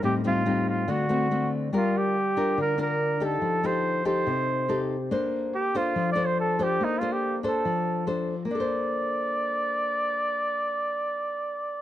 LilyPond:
<<
  \new Staff \with { instrumentName = "Flugelhorn" } { \time 4/4 \key bes \major \tempo 4 = 142 g'8 f'4 f'8 fis'4. r8 | f'8 g'4. bes'8 bes'4 a'8~ | a'8 c''4 c''2 r8 | r4 g'8 f'8~ \tuplet 3/2 { f'8 d''8 c''8 } a'8 g'8 |
\tuplet 3/2 { ees'8 f'8 g'8~ } g'8 a'4. r4 | d''1~ | d''1 | }
  \new Staff \with { instrumentName = "Nylon-string guitar" } { \time 4/4 \key bes \major << { <g c' ees'>8 <g c' ees'>8 <g c' ees'>4 <a c' fis'>8 <a c' fis'>8 <a c' fis'>4 | <d' f' bes'>4 r8 <d' f' bes'>4 <d' f' bes'>4 <ees' g' a'>8~ | <ees' g' a'>8 <ees' g' a'>4 <ees' g' a'>4. <ees' g' a'>8 r8 | <d' a' c''>4 r8 <d' a' c''>4 <d' a' c''>4 <d' a' c''>8~ |
<d' a' c''>8 <d' a' c''>4 <d' a' c''>4. <d' a' c''>8 r8 | <bes d' a' c''>1~ | <bes d' a' c''>1 | } \\ { a,2 d2 | g2 d2 | f2 c2 | bes2 f2 |
bes2 f2 | r1 | r1 | } >> }
>>